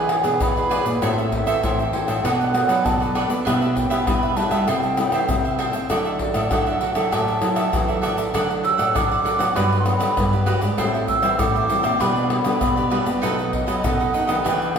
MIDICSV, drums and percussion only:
0, 0, Header, 1, 4, 480
1, 0, Start_track
1, 0, Key_signature, 1, "major"
1, 0, Tempo, 610998
1, 799, Time_signature, 4, 2, 24, 8
1, 11617, End_track
2, 0, Start_track
2, 0, Title_t, "Pandeiro"
2, 71, Note_on_c, 9, 54, 76
2, 150, Note_off_c, 9, 54, 0
2, 189, Note_on_c, 9, 54, 58
2, 268, Note_off_c, 9, 54, 0
2, 318, Note_on_c, 9, 54, 76
2, 396, Note_off_c, 9, 54, 0
2, 448, Note_on_c, 9, 54, 35
2, 526, Note_off_c, 9, 54, 0
2, 558, Note_on_c, 9, 54, 63
2, 637, Note_off_c, 9, 54, 0
2, 672, Note_on_c, 9, 54, 59
2, 751, Note_off_c, 9, 54, 0
2, 802, Note_on_c, 9, 54, 84
2, 881, Note_off_c, 9, 54, 0
2, 929, Note_on_c, 9, 54, 35
2, 1007, Note_off_c, 9, 54, 0
2, 1039, Note_on_c, 9, 54, 64
2, 1118, Note_off_c, 9, 54, 0
2, 1155, Note_on_c, 9, 54, 61
2, 1234, Note_off_c, 9, 54, 0
2, 1284, Note_on_c, 9, 54, 75
2, 1363, Note_off_c, 9, 54, 0
2, 1407, Note_on_c, 9, 54, 33
2, 1485, Note_off_c, 9, 54, 0
2, 1518, Note_on_c, 9, 54, 67
2, 1597, Note_off_c, 9, 54, 0
2, 1635, Note_on_c, 9, 54, 53
2, 1714, Note_off_c, 9, 54, 0
2, 1767, Note_on_c, 9, 54, 81
2, 1845, Note_off_c, 9, 54, 0
2, 1892, Note_on_c, 9, 54, 36
2, 1971, Note_off_c, 9, 54, 0
2, 2000, Note_on_c, 9, 54, 77
2, 2078, Note_off_c, 9, 54, 0
2, 2114, Note_on_c, 9, 54, 59
2, 2192, Note_off_c, 9, 54, 0
2, 2244, Note_on_c, 9, 54, 74
2, 2322, Note_off_c, 9, 54, 0
2, 2373, Note_on_c, 9, 54, 33
2, 2451, Note_off_c, 9, 54, 0
2, 2478, Note_on_c, 9, 54, 65
2, 2557, Note_off_c, 9, 54, 0
2, 2592, Note_on_c, 9, 54, 62
2, 2671, Note_off_c, 9, 54, 0
2, 2725, Note_on_c, 9, 54, 84
2, 2803, Note_off_c, 9, 54, 0
2, 2845, Note_on_c, 9, 54, 33
2, 2924, Note_off_c, 9, 54, 0
2, 2959, Note_on_c, 9, 54, 68
2, 3037, Note_off_c, 9, 54, 0
2, 3071, Note_on_c, 9, 54, 53
2, 3150, Note_off_c, 9, 54, 0
2, 3199, Note_on_c, 9, 54, 73
2, 3278, Note_off_c, 9, 54, 0
2, 3323, Note_on_c, 9, 54, 32
2, 3401, Note_off_c, 9, 54, 0
2, 3431, Note_on_c, 9, 54, 73
2, 3509, Note_off_c, 9, 54, 0
2, 3542, Note_on_c, 9, 54, 58
2, 3621, Note_off_c, 9, 54, 0
2, 3674, Note_on_c, 9, 54, 79
2, 3753, Note_off_c, 9, 54, 0
2, 3797, Note_on_c, 9, 54, 35
2, 3875, Note_off_c, 9, 54, 0
2, 3907, Note_on_c, 9, 54, 72
2, 3986, Note_off_c, 9, 54, 0
2, 4023, Note_on_c, 9, 54, 55
2, 4101, Note_off_c, 9, 54, 0
2, 4153, Note_on_c, 9, 54, 71
2, 4232, Note_off_c, 9, 54, 0
2, 4280, Note_on_c, 9, 54, 34
2, 4359, Note_off_c, 9, 54, 0
2, 4389, Note_on_c, 9, 54, 62
2, 4468, Note_off_c, 9, 54, 0
2, 4503, Note_on_c, 9, 54, 61
2, 4581, Note_off_c, 9, 54, 0
2, 4633, Note_on_c, 9, 54, 74
2, 4712, Note_off_c, 9, 54, 0
2, 4752, Note_on_c, 9, 54, 37
2, 4831, Note_off_c, 9, 54, 0
2, 4866, Note_on_c, 9, 54, 68
2, 4944, Note_off_c, 9, 54, 0
2, 4983, Note_on_c, 9, 54, 60
2, 5061, Note_off_c, 9, 54, 0
2, 5112, Note_on_c, 9, 54, 72
2, 5191, Note_off_c, 9, 54, 0
2, 5236, Note_on_c, 9, 54, 31
2, 5314, Note_off_c, 9, 54, 0
2, 5347, Note_on_c, 9, 54, 64
2, 5426, Note_off_c, 9, 54, 0
2, 5462, Note_on_c, 9, 54, 60
2, 5541, Note_off_c, 9, 54, 0
2, 5597, Note_on_c, 9, 54, 76
2, 5676, Note_off_c, 9, 54, 0
2, 5718, Note_on_c, 9, 54, 33
2, 5797, Note_off_c, 9, 54, 0
2, 5826, Note_on_c, 9, 54, 67
2, 5905, Note_off_c, 9, 54, 0
2, 5941, Note_on_c, 9, 54, 59
2, 6019, Note_off_c, 9, 54, 0
2, 6073, Note_on_c, 9, 54, 72
2, 6152, Note_off_c, 9, 54, 0
2, 6197, Note_on_c, 9, 54, 33
2, 6275, Note_off_c, 9, 54, 0
2, 6311, Note_on_c, 9, 54, 61
2, 6390, Note_off_c, 9, 54, 0
2, 6426, Note_on_c, 9, 54, 59
2, 6505, Note_off_c, 9, 54, 0
2, 6555, Note_on_c, 9, 54, 78
2, 6634, Note_off_c, 9, 54, 0
2, 6681, Note_on_c, 9, 54, 34
2, 6759, Note_off_c, 9, 54, 0
2, 6792, Note_on_c, 9, 54, 68
2, 6870, Note_off_c, 9, 54, 0
2, 6907, Note_on_c, 9, 54, 56
2, 6985, Note_off_c, 9, 54, 0
2, 7036, Note_on_c, 9, 54, 78
2, 7114, Note_off_c, 9, 54, 0
2, 7162, Note_on_c, 9, 54, 34
2, 7241, Note_off_c, 9, 54, 0
2, 7273, Note_on_c, 9, 54, 73
2, 7352, Note_off_c, 9, 54, 0
2, 7387, Note_on_c, 9, 54, 55
2, 7466, Note_off_c, 9, 54, 0
2, 7513, Note_on_c, 9, 54, 83
2, 7591, Note_off_c, 9, 54, 0
2, 7640, Note_on_c, 9, 54, 38
2, 7718, Note_off_c, 9, 54, 0
2, 7744, Note_on_c, 9, 54, 65
2, 7822, Note_off_c, 9, 54, 0
2, 7860, Note_on_c, 9, 54, 57
2, 7939, Note_off_c, 9, 54, 0
2, 7991, Note_on_c, 9, 54, 80
2, 8069, Note_off_c, 9, 54, 0
2, 8116, Note_on_c, 9, 54, 34
2, 8195, Note_off_c, 9, 54, 0
2, 8223, Note_on_c, 9, 54, 62
2, 8301, Note_off_c, 9, 54, 0
2, 8339, Note_on_c, 9, 54, 59
2, 8418, Note_off_c, 9, 54, 0
2, 8470, Note_on_c, 9, 54, 80
2, 8549, Note_off_c, 9, 54, 0
2, 8597, Note_on_c, 9, 54, 35
2, 8676, Note_off_c, 9, 54, 0
2, 8706, Note_on_c, 9, 54, 65
2, 8785, Note_off_c, 9, 54, 0
2, 8820, Note_on_c, 9, 54, 60
2, 8899, Note_off_c, 9, 54, 0
2, 8948, Note_on_c, 9, 54, 76
2, 9027, Note_off_c, 9, 54, 0
2, 9079, Note_on_c, 9, 54, 33
2, 9158, Note_off_c, 9, 54, 0
2, 9188, Note_on_c, 9, 54, 68
2, 9267, Note_off_c, 9, 54, 0
2, 9301, Note_on_c, 9, 54, 56
2, 9379, Note_off_c, 9, 54, 0
2, 9431, Note_on_c, 9, 54, 83
2, 9510, Note_off_c, 9, 54, 0
2, 9553, Note_on_c, 9, 54, 37
2, 9631, Note_off_c, 9, 54, 0
2, 9664, Note_on_c, 9, 54, 68
2, 9743, Note_off_c, 9, 54, 0
2, 9777, Note_on_c, 9, 54, 56
2, 9855, Note_off_c, 9, 54, 0
2, 9907, Note_on_c, 9, 54, 78
2, 9985, Note_off_c, 9, 54, 0
2, 10034, Note_on_c, 9, 54, 37
2, 10113, Note_off_c, 9, 54, 0
2, 10146, Note_on_c, 9, 54, 64
2, 10225, Note_off_c, 9, 54, 0
2, 10264, Note_on_c, 9, 54, 63
2, 10342, Note_off_c, 9, 54, 0
2, 10395, Note_on_c, 9, 54, 77
2, 10473, Note_off_c, 9, 54, 0
2, 10518, Note_on_c, 9, 54, 33
2, 10597, Note_off_c, 9, 54, 0
2, 10630, Note_on_c, 9, 54, 65
2, 10709, Note_off_c, 9, 54, 0
2, 10747, Note_on_c, 9, 54, 55
2, 10825, Note_off_c, 9, 54, 0
2, 10874, Note_on_c, 9, 54, 79
2, 10953, Note_off_c, 9, 54, 0
2, 11003, Note_on_c, 9, 54, 35
2, 11081, Note_off_c, 9, 54, 0
2, 11111, Note_on_c, 9, 54, 64
2, 11190, Note_off_c, 9, 54, 0
2, 11225, Note_on_c, 9, 54, 57
2, 11303, Note_off_c, 9, 54, 0
2, 11358, Note_on_c, 9, 54, 86
2, 11437, Note_off_c, 9, 54, 0
2, 11484, Note_on_c, 9, 54, 38
2, 11563, Note_off_c, 9, 54, 0
2, 11617, End_track
3, 0, Start_track
3, 0, Title_t, "Tamborim"
3, 71, Note_on_c, 9, 60, 86
3, 150, Note_off_c, 9, 60, 0
3, 189, Note_on_c, 9, 60, 75
3, 268, Note_off_c, 9, 60, 0
3, 318, Note_on_c, 9, 60, 78
3, 396, Note_off_c, 9, 60, 0
3, 558, Note_on_c, 9, 60, 69
3, 637, Note_off_c, 9, 60, 0
3, 802, Note_on_c, 9, 60, 78
3, 881, Note_off_c, 9, 60, 0
3, 1155, Note_on_c, 9, 60, 72
3, 1234, Note_off_c, 9, 60, 0
3, 1284, Note_on_c, 9, 60, 74
3, 1363, Note_off_c, 9, 60, 0
3, 1635, Note_on_c, 9, 60, 74
3, 1714, Note_off_c, 9, 60, 0
3, 1767, Note_on_c, 9, 60, 88
3, 1845, Note_off_c, 9, 60, 0
3, 2000, Note_on_c, 9, 60, 83
3, 2078, Note_off_c, 9, 60, 0
3, 2114, Note_on_c, 9, 60, 75
3, 2192, Note_off_c, 9, 60, 0
3, 2244, Note_on_c, 9, 60, 80
3, 2322, Note_off_c, 9, 60, 0
3, 2478, Note_on_c, 9, 60, 73
3, 2557, Note_off_c, 9, 60, 0
3, 2725, Note_on_c, 9, 60, 85
3, 2803, Note_off_c, 9, 60, 0
3, 3071, Note_on_c, 9, 60, 84
3, 3150, Note_off_c, 9, 60, 0
3, 3199, Note_on_c, 9, 60, 81
3, 3278, Note_off_c, 9, 60, 0
3, 3542, Note_on_c, 9, 60, 84
3, 3621, Note_off_c, 9, 60, 0
3, 3674, Note_on_c, 9, 60, 85
3, 3753, Note_off_c, 9, 60, 0
3, 3907, Note_on_c, 9, 60, 81
3, 3986, Note_off_c, 9, 60, 0
3, 4023, Note_on_c, 9, 60, 77
3, 4101, Note_off_c, 9, 60, 0
3, 4153, Note_on_c, 9, 60, 76
3, 4232, Note_off_c, 9, 60, 0
3, 4389, Note_on_c, 9, 60, 71
3, 4468, Note_off_c, 9, 60, 0
3, 4633, Note_on_c, 9, 60, 86
3, 4712, Note_off_c, 9, 60, 0
3, 4983, Note_on_c, 9, 60, 82
3, 5061, Note_off_c, 9, 60, 0
3, 5112, Note_on_c, 9, 60, 86
3, 5191, Note_off_c, 9, 60, 0
3, 5462, Note_on_c, 9, 60, 83
3, 5541, Note_off_c, 9, 60, 0
3, 5597, Note_on_c, 9, 60, 80
3, 5676, Note_off_c, 9, 60, 0
3, 5826, Note_on_c, 9, 60, 81
3, 5905, Note_off_c, 9, 60, 0
3, 5941, Note_on_c, 9, 60, 80
3, 6019, Note_off_c, 9, 60, 0
3, 6073, Note_on_c, 9, 60, 79
3, 6152, Note_off_c, 9, 60, 0
3, 6311, Note_on_c, 9, 60, 71
3, 6390, Note_off_c, 9, 60, 0
3, 6555, Note_on_c, 9, 60, 81
3, 6634, Note_off_c, 9, 60, 0
3, 6907, Note_on_c, 9, 60, 82
3, 6985, Note_off_c, 9, 60, 0
3, 7036, Note_on_c, 9, 60, 78
3, 7114, Note_off_c, 9, 60, 0
3, 7387, Note_on_c, 9, 60, 85
3, 7466, Note_off_c, 9, 60, 0
3, 7513, Note_on_c, 9, 60, 88
3, 7591, Note_off_c, 9, 60, 0
3, 7744, Note_on_c, 9, 60, 88
3, 7822, Note_off_c, 9, 60, 0
3, 7860, Note_on_c, 9, 60, 83
3, 7939, Note_off_c, 9, 60, 0
3, 7991, Note_on_c, 9, 60, 77
3, 8069, Note_off_c, 9, 60, 0
3, 8223, Note_on_c, 9, 60, 78
3, 8301, Note_off_c, 9, 60, 0
3, 8470, Note_on_c, 9, 60, 81
3, 8549, Note_off_c, 9, 60, 0
3, 8820, Note_on_c, 9, 60, 76
3, 8899, Note_off_c, 9, 60, 0
3, 8948, Note_on_c, 9, 60, 81
3, 9027, Note_off_c, 9, 60, 0
3, 9301, Note_on_c, 9, 60, 85
3, 9379, Note_off_c, 9, 60, 0
3, 9431, Note_on_c, 9, 60, 86
3, 9510, Note_off_c, 9, 60, 0
3, 9664, Note_on_c, 9, 60, 86
3, 9743, Note_off_c, 9, 60, 0
3, 9777, Note_on_c, 9, 60, 81
3, 9855, Note_off_c, 9, 60, 0
3, 9907, Note_on_c, 9, 60, 80
3, 9985, Note_off_c, 9, 60, 0
3, 10146, Note_on_c, 9, 60, 80
3, 10225, Note_off_c, 9, 60, 0
3, 10395, Note_on_c, 9, 60, 78
3, 10473, Note_off_c, 9, 60, 0
3, 10747, Note_on_c, 9, 60, 80
3, 10825, Note_off_c, 9, 60, 0
3, 10874, Note_on_c, 9, 60, 73
3, 10953, Note_off_c, 9, 60, 0
3, 11225, Note_on_c, 9, 60, 85
3, 11303, Note_off_c, 9, 60, 0
3, 11358, Note_on_c, 9, 60, 78
3, 11437, Note_off_c, 9, 60, 0
3, 11617, End_track
4, 0, Start_track
4, 0, Title_t, "Drums"
4, 189, Note_on_c, 9, 82, 81
4, 268, Note_off_c, 9, 82, 0
4, 318, Note_on_c, 9, 82, 78
4, 318, Note_on_c, 9, 87, 103
4, 396, Note_off_c, 9, 82, 0
4, 396, Note_off_c, 9, 87, 0
4, 448, Note_on_c, 9, 82, 36
4, 526, Note_off_c, 9, 82, 0
4, 558, Note_on_c, 9, 82, 63
4, 637, Note_off_c, 9, 82, 0
4, 672, Note_on_c, 9, 82, 86
4, 751, Note_off_c, 9, 82, 0
4, 802, Note_on_c, 9, 82, 76
4, 802, Note_on_c, 9, 87, 54
4, 881, Note_off_c, 9, 82, 0
4, 881, Note_off_c, 9, 87, 0
4, 929, Note_on_c, 9, 82, 36
4, 1007, Note_off_c, 9, 82, 0
4, 1039, Note_on_c, 9, 87, 70
4, 1118, Note_off_c, 9, 87, 0
4, 1155, Note_on_c, 9, 82, 80
4, 1234, Note_off_c, 9, 82, 0
4, 1284, Note_on_c, 9, 82, 81
4, 1284, Note_on_c, 9, 87, 98
4, 1363, Note_off_c, 9, 82, 0
4, 1363, Note_off_c, 9, 87, 0
4, 1407, Note_on_c, 9, 82, 36
4, 1485, Note_off_c, 9, 82, 0
4, 1635, Note_on_c, 9, 82, 80
4, 1714, Note_off_c, 9, 82, 0
4, 1767, Note_on_c, 9, 82, 86
4, 1767, Note_on_c, 9, 87, 59
4, 1845, Note_off_c, 9, 82, 0
4, 1845, Note_off_c, 9, 87, 0
4, 1892, Note_on_c, 9, 82, 36
4, 1971, Note_off_c, 9, 82, 0
4, 2000, Note_on_c, 9, 82, 75
4, 2078, Note_off_c, 9, 82, 0
4, 2114, Note_on_c, 9, 82, 83
4, 2192, Note_off_c, 9, 82, 0
4, 2244, Note_on_c, 9, 82, 71
4, 2244, Note_on_c, 9, 87, 98
4, 2322, Note_off_c, 9, 82, 0
4, 2322, Note_off_c, 9, 87, 0
4, 2373, Note_on_c, 9, 82, 35
4, 2451, Note_off_c, 9, 82, 0
4, 2592, Note_on_c, 9, 82, 82
4, 2671, Note_off_c, 9, 82, 0
4, 2725, Note_on_c, 9, 82, 82
4, 2725, Note_on_c, 9, 87, 56
4, 2803, Note_off_c, 9, 82, 0
4, 2803, Note_off_c, 9, 87, 0
4, 2845, Note_on_c, 9, 82, 32
4, 2924, Note_off_c, 9, 82, 0
4, 2959, Note_on_c, 9, 82, 71
4, 2959, Note_on_c, 9, 87, 72
4, 3037, Note_off_c, 9, 82, 0
4, 3037, Note_off_c, 9, 87, 0
4, 3071, Note_on_c, 9, 82, 78
4, 3150, Note_off_c, 9, 82, 0
4, 3199, Note_on_c, 9, 82, 82
4, 3199, Note_on_c, 9, 87, 100
4, 3278, Note_off_c, 9, 82, 0
4, 3278, Note_off_c, 9, 87, 0
4, 3323, Note_on_c, 9, 82, 33
4, 3401, Note_off_c, 9, 82, 0
4, 3431, Note_on_c, 9, 82, 70
4, 3509, Note_off_c, 9, 82, 0
4, 3542, Note_on_c, 9, 82, 78
4, 3621, Note_off_c, 9, 82, 0
4, 3674, Note_on_c, 9, 82, 83
4, 3674, Note_on_c, 9, 87, 61
4, 3753, Note_off_c, 9, 82, 0
4, 3753, Note_off_c, 9, 87, 0
4, 3797, Note_on_c, 9, 82, 38
4, 3875, Note_off_c, 9, 82, 0
4, 3907, Note_on_c, 9, 82, 75
4, 3986, Note_off_c, 9, 82, 0
4, 4023, Note_on_c, 9, 82, 77
4, 4101, Note_off_c, 9, 82, 0
4, 4153, Note_on_c, 9, 82, 77
4, 4153, Note_on_c, 9, 87, 101
4, 4232, Note_off_c, 9, 82, 0
4, 4232, Note_off_c, 9, 87, 0
4, 4280, Note_on_c, 9, 82, 33
4, 4359, Note_off_c, 9, 82, 0
4, 4503, Note_on_c, 9, 82, 88
4, 4581, Note_off_c, 9, 82, 0
4, 4633, Note_on_c, 9, 82, 84
4, 4633, Note_on_c, 9, 87, 61
4, 4712, Note_off_c, 9, 82, 0
4, 4712, Note_off_c, 9, 87, 0
4, 4752, Note_on_c, 9, 82, 35
4, 4831, Note_off_c, 9, 82, 0
4, 4866, Note_on_c, 9, 87, 71
4, 4944, Note_off_c, 9, 87, 0
4, 4983, Note_on_c, 9, 82, 77
4, 5061, Note_off_c, 9, 82, 0
4, 5112, Note_on_c, 9, 82, 77
4, 5112, Note_on_c, 9, 87, 91
4, 5191, Note_off_c, 9, 82, 0
4, 5191, Note_off_c, 9, 87, 0
4, 5236, Note_on_c, 9, 82, 33
4, 5314, Note_off_c, 9, 82, 0
4, 5462, Note_on_c, 9, 82, 80
4, 5541, Note_off_c, 9, 82, 0
4, 5597, Note_on_c, 9, 82, 90
4, 5597, Note_on_c, 9, 87, 60
4, 5676, Note_off_c, 9, 82, 0
4, 5676, Note_off_c, 9, 87, 0
4, 5718, Note_on_c, 9, 82, 35
4, 5797, Note_off_c, 9, 82, 0
4, 5826, Note_on_c, 9, 82, 76
4, 5905, Note_off_c, 9, 82, 0
4, 5941, Note_on_c, 9, 82, 80
4, 6019, Note_off_c, 9, 82, 0
4, 6073, Note_on_c, 9, 82, 72
4, 6073, Note_on_c, 9, 87, 104
4, 6152, Note_off_c, 9, 82, 0
4, 6152, Note_off_c, 9, 87, 0
4, 6197, Note_on_c, 9, 82, 35
4, 6275, Note_off_c, 9, 82, 0
4, 6311, Note_on_c, 9, 82, 67
4, 6390, Note_off_c, 9, 82, 0
4, 6426, Note_on_c, 9, 82, 86
4, 6505, Note_off_c, 9, 82, 0
4, 6555, Note_on_c, 9, 82, 83
4, 6555, Note_on_c, 9, 87, 58
4, 6634, Note_off_c, 9, 82, 0
4, 6634, Note_off_c, 9, 87, 0
4, 6681, Note_on_c, 9, 82, 33
4, 6759, Note_off_c, 9, 82, 0
4, 6907, Note_on_c, 9, 82, 81
4, 6985, Note_off_c, 9, 82, 0
4, 7036, Note_on_c, 9, 82, 78
4, 7036, Note_on_c, 9, 87, 96
4, 7114, Note_off_c, 9, 82, 0
4, 7114, Note_off_c, 9, 87, 0
4, 7162, Note_on_c, 9, 82, 33
4, 7241, Note_off_c, 9, 82, 0
4, 7273, Note_on_c, 9, 82, 71
4, 7352, Note_off_c, 9, 82, 0
4, 7387, Note_on_c, 9, 82, 82
4, 7466, Note_off_c, 9, 82, 0
4, 7513, Note_on_c, 9, 82, 80
4, 7513, Note_on_c, 9, 87, 60
4, 7591, Note_off_c, 9, 82, 0
4, 7591, Note_off_c, 9, 87, 0
4, 7640, Note_on_c, 9, 82, 34
4, 7718, Note_off_c, 9, 82, 0
4, 7744, Note_on_c, 9, 82, 70
4, 7822, Note_off_c, 9, 82, 0
4, 7860, Note_on_c, 9, 82, 78
4, 7939, Note_off_c, 9, 82, 0
4, 7991, Note_on_c, 9, 82, 77
4, 7991, Note_on_c, 9, 87, 89
4, 8069, Note_off_c, 9, 82, 0
4, 8069, Note_off_c, 9, 87, 0
4, 8116, Note_on_c, 9, 82, 34
4, 8195, Note_off_c, 9, 82, 0
4, 8223, Note_on_c, 9, 82, 65
4, 8301, Note_off_c, 9, 82, 0
4, 8339, Note_on_c, 9, 82, 76
4, 8418, Note_off_c, 9, 82, 0
4, 8470, Note_on_c, 9, 82, 79
4, 8470, Note_on_c, 9, 87, 58
4, 8549, Note_off_c, 9, 82, 0
4, 8549, Note_off_c, 9, 87, 0
4, 8597, Note_on_c, 9, 82, 34
4, 8676, Note_off_c, 9, 82, 0
4, 8706, Note_on_c, 9, 82, 72
4, 8706, Note_on_c, 9, 87, 65
4, 8785, Note_off_c, 9, 82, 0
4, 8785, Note_off_c, 9, 87, 0
4, 8820, Note_on_c, 9, 82, 80
4, 8899, Note_off_c, 9, 82, 0
4, 8948, Note_on_c, 9, 82, 86
4, 8948, Note_on_c, 9, 87, 95
4, 9027, Note_off_c, 9, 82, 0
4, 9027, Note_off_c, 9, 87, 0
4, 9079, Note_on_c, 9, 82, 37
4, 9158, Note_off_c, 9, 82, 0
4, 9188, Note_on_c, 9, 82, 68
4, 9267, Note_off_c, 9, 82, 0
4, 9301, Note_on_c, 9, 82, 86
4, 9379, Note_off_c, 9, 82, 0
4, 9431, Note_on_c, 9, 82, 82
4, 9431, Note_on_c, 9, 87, 66
4, 9510, Note_off_c, 9, 82, 0
4, 9510, Note_off_c, 9, 87, 0
4, 9553, Note_on_c, 9, 82, 33
4, 9631, Note_off_c, 9, 82, 0
4, 9777, Note_on_c, 9, 82, 75
4, 9855, Note_off_c, 9, 82, 0
4, 9907, Note_on_c, 9, 82, 79
4, 9907, Note_on_c, 9, 87, 97
4, 9985, Note_off_c, 9, 82, 0
4, 9985, Note_off_c, 9, 87, 0
4, 10034, Note_on_c, 9, 82, 35
4, 10113, Note_off_c, 9, 82, 0
4, 10264, Note_on_c, 9, 82, 82
4, 10342, Note_off_c, 9, 82, 0
4, 10395, Note_on_c, 9, 82, 75
4, 10395, Note_on_c, 9, 87, 54
4, 10473, Note_off_c, 9, 82, 0
4, 10473, Note_off_c, 9, 87, 0
4, 10518, Note_on_c, 9, 82, 37
4, 10597, Note_off_c, 9, 82, 0
4, 10630, Note_on_c, 9, 87, 74
4, 10709, Note_off_c, 9, 87, 0
4, 10747, Note_on_c, 9, 82, 79
4, 10825, Note_off_c, 9, 82, 0
4, 10874, Note_on_c, 9, 82, 86
4, 10874, Note_on_c, 9, 87, 99
4, 10953, Note_off_c, 9, 82, 0
4, 10953, Note_off_c, 9, 87, 0
4, 11003, Note_on_c, 9, 82, 35
4, 11081, Note_off_c, 9, 82, 0
4, 11111, Note_on_c, 9, 82, 72
4, 11190, Note_off_c, 9, 82, 0
4, 11225, Note_on_c, 9, 82, 83
4, 11303, Note_off_c, 9, 82, 0
4, 11358, Note_on_c, 9, 82, 81
4, 11358, Note_on_c, 9, 87, 61
4, 11437, Note_off_c, 9, 82, 0
4, 11437, Note_off_c, 9, 87, 0
4, 11484, Note_on_c, 9, 82, 35
4, 11563, Note_off_c, 9, 82, 0
4, 11617, End_track
0, 0, End_of_file